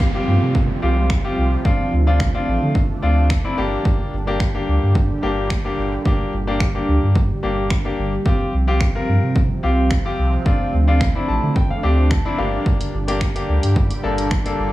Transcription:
0.00 3.54 C3 medium
0.00 3.54 F3 medium
0.00 1.63 G3 medium
0.00 3.54 F4 medium
0.00 1.63 G4 medium
0.00 finger snap loud
0.00 kick loud
0.00 downlifter medium
0.14 0.58 C4 medium
0.14 0.58 F4 medium
0.14 0.58 G4 medium
0.27 0.37 G2 loud
0.42 0.70 C3 medium
0.55 kick loud
0.82 1.20 C2 medium
0.82 1.09 C4 medium
0.82 1.09 F4 medium
0.82 1.09 G4 medium
1.10 finger snap loud
1.10 kick loud
1.24 1.51 C4 medium
1.24 1.51 F4 medium
1.24 1.51 G4 medium
1.37 1.56 C2 medium
1.65 3.56 A3 medium
1.65 1.91 C4 medium
1.65 1.91 D4 medium
1.65 8.22 D4 medium
1.65 1.92 F4 medium
1.65 kick loud
1.92 2.30 D2 loud
2.07 2.24 C4 medium
2.07 2.24 D4 medium
2.07 2.24 F4 loud
2.20 finger snap loud
2.20 kick loud
2.34 2.78 C4 medium
2.34 2.78 D4 medium
2.34 2.78 F4 medium
2.48 2.57 A1 loud
2.62 2.90 D3 medium
2.75 kick loud
3.02 3.40 D2 medium
3.02 3.29 C4 medium
3.02 3.29 D4 medium
3.02 3.29 F4 medium
3.30 finger snap loud
3.30 kick loud
3.44 3.58 C4 medium
3.44 3.56 D4 medium
3.44 3.58 E4 medium
3.57 3.76 G1 medium
3.57 8.22 A#2 medium
3.57 8.22 D3 medium
3.57 10.42 G3 medium
3.57 4.13 A#3 medium
3.57 4.13 D4 medium
3.57 10.42 G4 medium
3.57 4.13 G4 medium
3.85 kick loud
4.13 4.50 G1 loud
4.27 4.44 A#3 medium
4.27 4.44 D4 medium
4.27 4.44 G4 medium
4.40 finger snap loud
4.40 kick loud
4.54 4.98 A#3 medium
4.54 4.98 D4 medium
4.54 4.98 G4 medium
4.68 4.78 D2 loud
4.82 5.10 G2 medium
4.95 kick loud
5.22 5.60 G1 medium
5.22 5.49 A#3 medium
5.22 5.49 D4 medium
5.22 5.49 G4 medium
5.50 finger snap loud
5.50 kick loud
5.65 5.91 A#3 medium
5.65 5.91 D4 medium
5.65 5.91 G4 medium
5.78 5.97 G1 medium
6.05 6.32 A#3 medium
6.05 6.32 D4 medium
6.05 6.32 G4 medium
6.05 kick loud
6.33 6.70 G1 loud
6.47 6.64 A#3 medium
6.47 6.65 D4 medium
6.47 6.65 G4 loud
6.60 finger snap loud
6.60 kick loud
6.75 7.18 A#3 medium
6.75 7.18 D4 medium
6.75 7.19 G4 medium
6.88 6.98 D2 loud
7.03 7.30 G2 medium
7.15 kick loud
7.43 7.81 G1 medium
7.43 7.69 A#3 medium
7.43 7.70 D4 medium
7.43 7.70 G4 medium
7.70 finger snap loud
7.70 kick loud
7.85 8.11 A#3 medium
7.85 8.11 D4 medium
7.85 8.12 G4 medium
7.98 8.17 G1 medium
8.25 12.34 C3 medium
8.25 12.34 F3 medium
8.25 8.52 C4 medium
8.25 12.34 C4 medium
8.25 8.52 F4 medium
8.25 8.52 G4 medium
8.25 kick loud
8.53 8.91 C2 medium
8.67 8.85 C4 medium
8.67 8.85 F4 medium
8.67 8.85 G4 loud
8.81 finger snap loud
8.81 kick loud
8.95 9.39 C4 medium
8.95 9.39 F4 medium
8.95 9.39 A#4 medium
9.08 9.18 G2 loud
9.23 9.50 C3 medium
9.36 kick loud
9.63 10.01 C2 medium
9.63 9.90 C4 medium
9.63 9.90 F4 medium
9.63 9.90 G4 medium
9.91 finger snap loud
9.91 kick loud
10.05 10.32 C4 medium
10.05 10.32 F4 medium
10.05 10.32 G4 medium
10.18 10.37 C2 medium
10.45 12.37 A3 medium
10.45 10.72 C4 medium
10.45 10.72 D4 medium
10.45 14.73 D4 medium
10.45 10.72 F4 medium
10.45 kick loud
10.73 11.11 D2 loud
10.88 11.05 C4 medium
10.88 11.05 D4 medium
10.88 11.05 F4 medium
11.01 finger snap loud
11.01 kick loud
11.15 11.59 C4 medium
11.15 11.59 D4 medium
11.15 11.59 E4 medium
11.28 11.38 A1 loud
11.28 11.54 A5 medium
11.43 11.70 D3 medium
11.56 11.69 G5 medium
11.56 kick loud
11.70 12.08 F5 medium
11.83 12.21 D2 medium
11.83 12.10 C4 medium
11.83 12.10 D4 medium
11.83 12.10 G4 medium
12.11 12.37 A5 medium
12.11 finger snap loud
12.11 kick loud
12.25 12.38 C4 medium
12.25 12.37 D4 medium
12.25 12.39 E4 medium
12.38 12.57 G1 medium
12.38 14.73 A#2 medium
12.38 14.73 D3 medium
12.38 14.73 G3 medium
12.38 12.93 A#3 medium
12.38 12.93 D4 medium
12.38 12.94 G4 medium
12.38 14.56 G4 medium
12.38 12.64 F5 medium
12.66 kick loud
12.81 closed hi-hat medium
12.93 13.31 G1 loud
13.08 13.25 A#3 medium
13.08 13.25 D4 medium
13.08 13.25 G4 loud
13.08 closed hi-hat medium
13.21 finger snap loud
13.21 kick loud
13.35 13.79 A#3 medium
13.35 13.79 D4 medium
13.35 13.79 G4 medium
13.35 closed hi-hat medium
13.48 13.58 D2 loud
13.63 13.91 G2 medium
13.63 closed hi-hat medium
13.76 kick loud
13.91 closed hi-hat medium
14.03 14.41 G1 medium
14.03 14.30 A#3 medium
14.03 14.30 D4 medium
14.03 14.30 A4 medium
14.18 closed hi-hat medium
14.31 finger snap loud
14.31 kick loud
14.45 14.72 A#3 medium
14.45 14.72 D4 medium
14.45 14.72 A4 medium
14.45 closed hi-hat medium
14.59 14.73 G1 medium
14.59 14.73 F4 medium

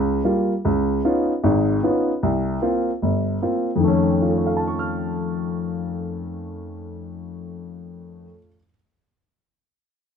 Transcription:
0.00 0.19 C#2 medium
0.24 0.52 G3 soft
0.24 0.52 A#3 soft
0.24 0.52 F4 medium
0.65 0.99 C#2 medium
1.04 1.31 B3 soft
1.04 1.31 C#4 soft
1.04 1.31 D#4 soft
1.04 1.32 F4 medium
1.44 1.78 G#1 medium
1.44 1.78 G#2 medium
1.83 2.10 B3 medium
1.83 2.11 C#4 soft
1.83 2.11 D#4 soft
1.83 2.11 F4 medium
2.23 2.57 C2 medium
2.62 2.89 A#3 soft
2.62 2.90 C4 soft
2.62 2.90 F4 medium
3.02 3.37 G1 medium
3.42 3.69 A#3 soft
3.42 3.70 C4 soft
3.42 3.70 F4 soft
3.76 8.24 F2 medium
3.80 8.29 D#3 medium
3.80 8.33 A3 medium
3.88 8.36 C#4 medium
4.22 8.46 F4 soft
4.30 8.50 A4 soft
4.38 8.54 C#5 soft
4.46 8.58 F5 soft
4.57 8.63 A5 soft
4.67 8.69 C#6 soft
4.79 8.74 F6 soft

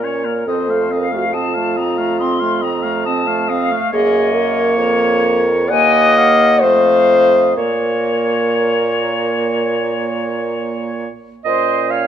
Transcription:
0.00 0.42 A#2 medium
0.00 0.27 C#4 medium
0.00 0.49 A#4 medium
0.00 0.46 C#5 medium
0.04 0.26 C#5 medium
0.25 0.46 A#3 soft
0.25 0.47 A#4 soft
0.47 3.76 F2 medium
0.47 0.70 C4 medium
0.47 1.00 A4 medium
0.47 0.92 C5 medium
0.47 0.72 D#5 medium
0.69 0.93 A3 medium
0.69 0.93 F5 medium
0.91 1.14 C4 medium
0.91 1.13 D#5 medium
0.91 1.35 F5 medium
0.99 1.09 A#4 medium
1.08 1.18 A4 medium
1.08 1.33 F5 soft
1.13 1.34 A3 medium
1.13 1.27 F#4 medium
1.26 1.33 A4 medium
1.33 1.58 C4 medium
1.33 3.46 F4 loud
1.33 1.55 D#5 medium
1.33 1.78 A5 medium
1.54 1.80 A3 medium
1.54 1.78 F5 medium
1.76 2.01 C4 medium
1.76 1.99 D#5 medium
1.76 2.22 A#5 medium
1.97 2.20 A3 medium
1.97 2.18 F5 medium
2.19 2.44 C4 medium
2.19 2.41 D#5 medium
2.19 2.64 C6 medium
2.40 2.65 A3 medium
2.40 2.63 F5 medium
2.61 2.86 C4 medium
2.61 2.84 D#5 medium
2.61 3.07 A#5 medium
2.82 3.07 A3 medium
2.82 3.04 F5 medium
3.05 3.30 C4 medium
3.05 3.29 D#5 medium
3.05 3.51 A5 medium
3.27 3.52 A3 medium
3.27 3.49 F5 medium
3.48 3.73 C4 medium
3.48 3.73 D#5 medium
3.48 3.92 F5 medium
3.71 3.93 A3 medium
3.71 3.92 F5 medium
3.92 4.79 F#2 medium
3.92 5.54 A#3 medium
3.92 4.36 G#4 loud
3.92 5.70 C#5 medium
3.92 4.75 D#5 medium
4.35 5.72 A#4 loud
4.76 5.72 F2 medium
4.76 5.39 C#5 medium
5.69 6.64 D#2 medium
5.69 6.64 A#3 medium
5.69 6.63 D#5 loud
5.69 6.19 F#5 medium
5.69 6.18 G#5 medium
6.16 6.50 F5 medium
6.16 6.65 F#5 medium
6.61 7.57 F2 medium
6.61 7.57 A3 medium
6.61 7.56 C5 loud
6.61 7.56 D#5 medium
6.61 7.56 F5 medium
7.57 11.08 A#2 medium
7.57 11.08 A#3 medium
7.57 10.95 A#4 loud
7.57 10.95 C#5 medium
7.57 11.08 C#5 medium
11.45 12.07 A#2 medium
11.45 12.07 C#4 medium
11.45 11.94 C5 medium
11.45 11.92 D#5 loud
11.91 12.07 C#5 medium
11.91 12.07 F5 medium

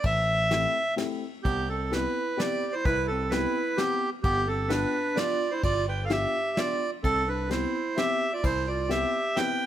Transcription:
0.03 0.65 A1 medium
0.03 0.94 E5 loud
0.03 kick medium
0.03 ride soft
0.51 0.75 A3 medium
0.51 0.75 C4 soft
0.51 0.75 E4 medium
0.51 0.75 G4 medium
0.51 snare medium
0.51 ride soft
0.96 1.21 A3 medium
0.96 1.21 C4 medium
0.96 1.22 E4 medium
0.96 1.21 G4 medium
0.96 snare medium
0.96 ride medium
1.43 2.06 C2 medium
1.43 1.66 B3 medium
1.43 1.69 G4 loud
1.43 kick medium
1.43 ride soft
1.69 1.91 C4 medium
1.69 1.93 A4 medium
1.91 2.15 B3 medium
1.91 2.16 C4 soft
1.91 2.16 E4 soft
1.91 2.36 E4 medium
1.91 2.16 G4 medium
1.91 2.40 B4 medium
1.91 snare medium
1.91 ride soft
2.37 2.62 B3 medium
2.37 2.61 C4 soft
2.37 2.62 E4 medium
2.37 2.62 G4 medium
2.37 2.72 G4 medium
2.37 2.75 D5 loud
2.37 snare medium
2.37 ride soft
2.73 2.85 E4 medium
2.73 2.85 C5 medium
2.85 3.45 C2 medium
2.85 3.08 E4 medium
2.85 3.07 B4 loud
2.85 kick medium
2.85 ride soft
3.08 3.31 C4 medium
3.08 3.32 A4 medium
3.30 3.55 B3 medium
3.30 3.55 C4 medium
3.30 3.55 E4 medium
3.30 3.76 E4 medium
3.30 3.55 G4 medium
3.30 3.79 B4 medium
3.30 snare medium
3.30 ride soft
3.77 4.01 B3 medium
3.77 4.11 B3 medium
3.77 4.01 C4 soft
3.77 4.01 E4 medium
3.77 4.10 G4 loud
3.77 4.01 G4 medium
3.77 snare medium
3.77 ride soft
4.23 4.84 G1 medium
4.23 4.46 B3 medium
4.23 4.48 G4 loud
4.23 kick loud
4.23 ride medium
4.47 4.69 C4 medium
4.47 4.71 A4 medium
4.69 4.93 B3 medium
4.69 4.94 D4 medium
4.69 5.14 D4 medium
4.69 4.93 F4 soft
4.69 4.94 G4 medium
4.69 5.18 B4 medium
4.69 snare medium
4.69 ride soft
5.15 5.40 B3 soft
5.15 5.40 D4 medium
5.15 5.40 F4 medium
5.15 5.51 F4 medium
5.15 5.40 G4 medium
5.15 5.53 D5 loud
5.15 snare medium
5.15 ride soft
5.51 5.63 E4 medium
5.51 5.62 C5 medium
5.63 6.25 G1 medium
5.63 5.86 F4 medium
5.63 5.86 D5 loud
5.63 kick medium
5.63 ride medium
5.89 6.03 B4 medium
5.89 6.05 G5 medium
6.05 6.11 A4 medium
6.05 6.12 F5 medium
6.10 6.34 B3 soft
6.10 6.34 D4 soft
6.10 6.34 F4 medium
6.10 6.34 G4 medium
6.10 6.55 G4 medium
6.10 6.59 E5 loud
6.10 snare medium
6.10 ride soft
6.57 6.81 B3 medium
6.57 6.81 D4 soft
6.57 6.82 F4 soft
6.57 6.91 F4 medium
6.57 6.81 G4 medium
6.57 6.91 D5 loud
6.57 snare medium
6.57 ride soft
7.04 7.65 C2 medium
7.04 7.26 C4 medium
7.04 7.29 A4 loud
7.04 kick medium
7.04 ride soft
7.27 7.49 D4 medium
7.27 7.50 B4 medium
7.50 7.74 B3 medium
7.50 7.74 C4 medium
7.50 7.74 E4 soft
7.50 7.95 E4 medium
7.50 7.74 G4 medium
7.50 7.99 C5 medium
7.50 snare medium
7.50 ride soft
7.96 8.21 B3 soft
7.96 8.21 C4 medium
7.96 8.21 E4 soft
7.96 8.21 G4 medium
7.96 8.30 G4 medium
7.96 8.33 E5 loud
7.96 snare medium
7.96 ride soft
8.33 8.42 F4 medium
8.33 8.45 D5 medium
8.42 9.04 C2 medium
8.42 8.65 E4 medium
8.42 8.69 C5 loud
8.42 kick medium
8.42 ride medium
8.68 8.89 F4 medium
8.68 8.91 D5 medium
8.88 9.13 B3 medium
8.88 9.13 C4 medium
8.88 9.13 E4 soft
8.88 9.13 G4 medium
8.88 9.34 G4 medium
8.88 9.38 E5 medium
8.88 snare medium
8.88 ride soft
9.36 9.60 B3 medium
9.36 9.60 C4 medium
9.36 9.60 E4 medium
9.36 9.60 G4 medium
9.36 9.66 B4 medium
9.36 9.66 G5 loud
9.36 snare medium
9.36 ride soft

